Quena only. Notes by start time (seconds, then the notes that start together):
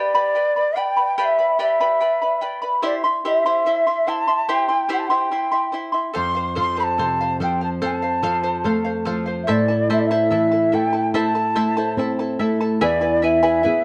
Already playing: D5
0.78 G5
1.20 F5
1.25 E5
1.62 E5
2.85 D5
3.26 E5
4.08 A5
4.50 G5
4.93 G5
4.99 A5
5.07 G5
6.17 C6
6.58 C6
6.79 A5 B5
7.43 G5
7.64 A5
7.85 A5
9.43 E5
9.50 D5
9.92 E5
9.99 D5
10.06 E5
10.74 G5
11.16 A5
12.82 D5
13.23 E5